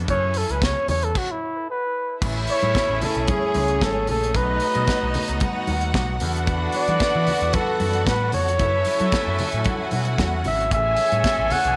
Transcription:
Already playing: string section A4
0.08 picked electric bass F#2, string section F#3 C#4 E4 G#4, flugelhorn C#5, kick, closed hi-hat, low conga
0.34 flugelhorn A4, open hi-hat
0.49 picked electric bass C#2, flugelhorn B4, closed hi-hat
0.62 flugelhorn C#5, kick, snare, closed hi-hat
0.88 picked electric bass E2, flugelhorn C#5, open hi-hat, muted conga, low conga
1.02 flugelhorn A4, closed hi-hat
1.15 flugelhorn F#4, kick, crash
1.31 flugelhorn E4
1.70 flugelhorn B4
2.21 picked electric bass A1, horn section E3 A3 C#4 E4, string section A3 C#4 E4 G#4 E5, kick, crash, muted conga
2.47 flugelhorn C#5, open hi-hat
2.62 picked electric bass A2, closed hi-hat, high conga
2.75 kick, snare, closed hi-hat, muted conga
2.90 picked electric bass A1
3.01 flugelhorn A4, open hi-hat, muted conga, low conga
3.15 picked electric bass B1, closed hi-hat
3.27 string section C#4 C#5, flugelhorn G#4, kick, closed hi-hat, muted conga, high conga
3.54 picked electric bass C#2, open hi-hat, muted conga, high conga
3.68 closed hi-hat
3.81 picked electric bass G#1, flugelhorn A4, kick, snare, closed hi-hat, high conga
4.07 picked electric bass A#1, flugelhorn A4, open hi-hat, low conga
4.23 closed hi-hat
4.34 picked electric bass B1, horn section F#3 B3 D#4 F#4, string section B3 D#4 D#5, flugelhorn B4, kick, closed hi-hat, muted conga
4.60 open hi-hat
4.75 picked electric bass B2, closed hi-hat, high conga
4.87 kick, snare, closed hi-hat
5.03 picked electric bass B1
5.14 open hi-hat, low conga
5.28 picked electric bass C#2, closed hi-hat
5.40 string section F#4 F#5, kick, closed hi-hat, high conga
5.67 picked electric bass D#2, open hi-hat, muted conga, high conga
5.81 closed hi-hat
5.94 picked electric bass B1, kick, snare, closed hi-hat, muted conga, high conga
6.20 picked electric bass E2, string section E3 B3 D4 F#4 A4 F#5, horn section B3 D4 E4 B4, open hi-hat, low conga
6.36 closed hi-hat
6.47 kick, closed hi-hat
6.72 flugelhorn D5, open hi-hat, muted conga
6.88 picked electric bass E3, closed hi-hat, high conga
7.00 muted picked electric bass stroke, kick, snare, closed hi-hat, muted conga
7.16 picked electric bass E3
7.27 open hi-hat, low conga
7.41 picked electric bass E2, closed hi-hat
7.53 flugelhorn A4, kick, closed hi-hat, high conga
7.80 picked electric bass F#2, open hi-hat, muted conga, high conga
7.93 closed hi-hat
8.07 picked electric bass A2, flugelhorn B4, kick, snare, closed hi-hat, muted conga, high conga
8.32 picked electric bass F2, flugelhorn C#5, open hi-hat, muted conga, low conga
8.48 closed hi-hat
8.59 picked electric bass F#2, string section F#3 C#4 E4 E5 G#5, horn section A3 E4 F#4 A4, kick, closed hi-hat, muted conga, low conga
8.85 open hi-hat, muted conga
9.00 picked electric bass F#3, closed hi-hat, high conga
9.12 kick, snare, closed hi-hat, muted conga
9.27 picked electric bass F#2
9.39 open hi-hat, muted conga, low conga
9.52 picked electric bass A2, closed hi-hat
9.64 string section F#4 F#5, kick, closed hi-hat, muted conga, high conga
9.91 picked electric bass B2, open hi-hat, muted conga, high conga
10.05 closed hi-hat
10.18 picked electric bass E2, kick, snare, closed hi-hat, muted conga, high conga
10.44 picked electric bass G#1, flugelhorn E5, open hi-hat, muted conga, low conga
10.60 closed hi-hat
10.71 picked electric bass A1, string section E3 A3 G#4 G#5, horn section C#4 A4 C#5, flugelhorn E5, kick, closed hi-hat
10.96 open hi-hat, muted conga
11.12 picked electric bass A2, closed hi-hat, high conga
11.24 kick, snare, closed hi-hat
11.39 picked electric bass A1
11.50 flugelhorn F#5, open hi-hat, low conga
11.64 picked electric bass B1, closed hi-hat

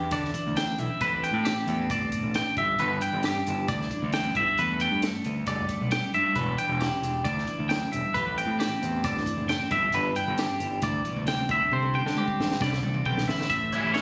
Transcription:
Already playing: clean electric guitar E2 E3 D4 G4
0.11 fingered electric bass D3, clean electric guitar E4 D5, kick, closed hi-hat
0.24 snare
0.34 clean electric guitar E3, kick, closed hi-hat
0.47 fingered electric bass D2
0.56 clean electric guitar D4 G5, snare, closed hi-hat
0.78 fingered electric bass B1, clean electric guitar E3 E5, closed hi-hat
1.01 fingered electric bass A1, clean electric guitar A2 E3 C4 D4 G4 B4, kick, closed hi-hat
1.24 clean electric guitar C4 G5, closed hi-hat
1.33 fingered electric bass A2
1.45 clean electric guitar E3 G4, snare, closed hi-hat
1.67 fingered electric bass E2, clean electric guitar A3, closed hi-hat
1.81 clean electric guitar C4
1.89 fingered electric bass G1, clean electric guitar D4 D5, kick, closed hi-hat
2.12 kick, closed hi-hat
2.17 clean electric guitar B2
2.23 fingered electric bass A1
2.34 clean electric guitar A2 G5, snare, closed hi-hat
2.57 fingered electric bass G1, clean electric guitar G2 G4 E5, kick, closed hi-hat
2.79 fingered electric bass G1, clean electric guitar D4 B4, closed hi-hat
3.01 clean electric guitar E3 G5, closed hi-hat
3.13 fingered electric bass G1
3.23 clean electric guitar D4 G4, snare, closed hi-hat
3.47 fingered electric bass G1, clean electric guitar E4, closed hi-hat
3.68 fingered electric bass D2, clean electric guitar E3 D5, kick, closed hi-hat
3.81 snare
3.91 clean electric guitar D4, kick, closed hi-hat
4.02 fingered electric bass D2
4.12 clean electric guitar E3 G5, snare, closed hi-hat
4.35 fingered electric bass G1, clean electric guitar G2 E4 E5, kick, closed hi-hat
4.48 clean electric guitar F#4
4.58 fingered electric bass E2, clean electric guitar A3 B4, closed hi-hat
4.80 clean electric guitar G3 G5, closed hi-hat
4.91 fingered electric bass G2
5.02 clean electric guitar A3, snare, closed hi-hat
5.24 fingered electric bass D2, clean electric guitar B3, closed hi-hat
5.46 fingered electric bass F#1, clean electric guitar G3 D5, kick, closed hi-hat
5.69 clean electric guitar A3, kick, closed hi-hat
5.81 fingered electric bass B1
5.91 clean electric guitar G3 G5, snare, closed hi-hat
6.14 clean electric guitar G2 E4 E5, fingered electric bass G2, closed hi-hat
6.26 clean electric guitar F#4
6.35 fingered electric bass E1, clean electric guitar E2 G4 B4, kick, closed hi-hat
6.58 clean electric guitar D4 G5, closed hi-hat
6.69 fingered electric bass E1
6.81 clean electric guitar E3 G4, snare, closed hi-hat
7.02 fingered electric bass E1, clean electric guitar D4, closed hi-hat
7.24 fingered electric bass D2, clean electric guitar E4 D5, kick, closed hi-hat
7.38 snare
7.47 clean electric guitar E3, kick, closed hi-hat
7.59 fingered electric bass D2
7.69 clean electric guitar F#2 G5, snare, closed hi-hat
7.92 fingered electric bass E1, clean electric guitar G2 E5, closed hi-hat
8.14 fingered electric bass A1, clean electric guitar A2 G4 B4, kick, closed hi-hat
8.38 clean electric guitar C4 G5, closed hi-hat
8.47 fingered electric bass A2
8.59 clean electric guitar E3 G4, snare, closed hi-hat
8.82 fingered electric bass E2, clean electric guitar C4, closed hi-hat
9.03 fingered electric bass G1, clean electric guitar D4 D5, kick, closed hi-hat
9.17 snare
9.26 clean electric guitar E3, kick, closed hi-hat
9.37 fingered electric bass F#1
9.48 clean electric guitar A3 G5, snare, closed hi-hat
9.59 clean electric guitar C4
9.70 fingered electric bass G1, clean electric guitar G2 E4 E5, kick, closed hi-hat
9.83 clean electric guitar G4
9.92 fingered electric bass G1, clean electric guitar D4 B4, closed hi-hat
10.15 clean electric guitar E3 G5, closed hi-hat
10.28 fingered electric bass G1
10.38 clean electric guitar D4 G4, snare, closed hi-hat
10.60 fingered electric bass G1, clean electric guitar E4, closed hi-hat
10.82 fingered electric bass D2, clean electric guitar E3 D5, kick, closed hi-hat
11.05 clean electric guitar B2, kick, closed hi-hat
11.16 fingered electric bass D2
11.27 clean electric guitar C3 G5, snare, closed hi-hat
11.49 fingered electric bass D2, clean electric guitar D3 G3 C4 D4 E5, kick, closed hi-hat
11.53 clean electric guitar E4
11.72 fingered electric bass C3, clean electric guitar C4 C5, kick
11.83 high tom
11.94 clean electric guitar G3 G5, high tom
12.05 fingered electric bass D3, snare
12.17 clean electric guitar C4 G4, mid tom
12.28 kick
12.40 fingered electric bass A1, clean electric guitar D4, snare
12.51 snare
12.60 fingered electric bass C2, clean electric guitar G3 D5, kick, snare
12.73 snare
12.83 fingered electric bass C2, clean electric guitar A3, mid tom
12.94 clean electric guitar C4, mid tom
13.06 fingered electric bass B1, clean electric guitar G3 G5, kick
13.18 snare
13.28 fingered electric bass A1, clean electric guitar D3 E4 E5, snare
13.41 snare
13.50 fingered electric bass A1, clean electric guitar A2 E5, kick, closed hi-hat
13.72 overdriven electric guitar E3 G3 C#4 E4, clean electric guitar E4, closed hi-hat
13.84 fingered electric bass A1
13.94 overdriven electric guitar E3 G3 C#4 E4, clean electric guitar C#5, snare, closed hi-hat
13.98 clean electric guitar C#4

